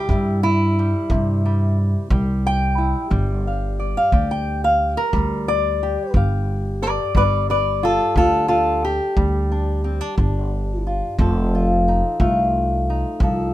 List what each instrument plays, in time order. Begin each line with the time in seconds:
Already playing: steel-string acoustic guitar C3 G3 G4 A#4
0.09 upright bass G2, steel-string acoustic guitar G3 E4, kick
0.43 steel-string acoustic guitar E4
0.79 steel-string acoustic guitar G3
1.10 upright bass G2, steel-string acoustic guitar C3, kick
1.45 steel-string acoustic guitar G3
2.10 upright bass C2, steel-string acoustic guitar G3 G4, kick
2.47 steel-string acoustic guitar G5
2.78 steel-string acoustic guitar E4
3.10 upright bass G1, steel-string acoustic guitar G3, kick
3.47 steel-string acoustic guitar F5
3.79 steel-string acoustic guitar D5
3.97 steel-string acoustic guitar F5
4.12 upright bass D2, steel-string acoustic guitar G4 D5, kick
4.31 steel-string acoustic guitar G5
4.64 steel-string acoustic guitar F5
4.97 steel-string acoustic guitar A#4
5.13 upright bass D2, steel-string acoustic guitar G3, kick
5.48 steel-string acoustic guitar D5
5.83 steel-string acoustic guitar G4
6.14 upright bass G1, steel-string acoustic guitar G4 F5, kick
6.82 steel-string acoustic guitar B4 D5
7.15 upright bass G1, steel-string acoustic guitar G3 B4 D5, kick
7.50 steel-string acoustic guitar B4 D5
7.83 steel-string acoustic guitar F4 A4
8.16 upright bass D2, steel-string acoustic guitar D4 F4 A4, kick
8.48 steel-string acoustic guitar F4 A4
8.85 steel-string acoustic guitar G4
9.17 upright bass D2, steel-string acoustic guitar G3, kick
9.52 steel-string acoustic guitar D4
9.84 steel-string acoustic guitar C4
10.01 steel-string acoustic guitar D4
10.18 upright bass G1, steel-string acoustic guitar D4, kick
10.87 steel-string acoustic guitar F4
11.19 upright bass F1, steel-string acoustic guitar F3 A4, kick
11.55 steel-string acoustic guitar F4
11.88 steel-string acoustic guitar D#4
12.20 upright bass C2, steel-string acoustic guitar A3 F4, kick
12.90 steel-string acoustic guitar D#4
13.20 upright bass C2, steel-string acoustic guitar F3 A4, kick